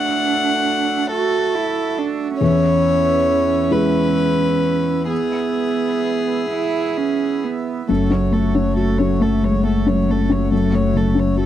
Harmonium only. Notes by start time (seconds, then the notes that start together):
Already playing: A3 F#4 E5
2.43 B3 E4 E5
7.88 A3 F#4 C#5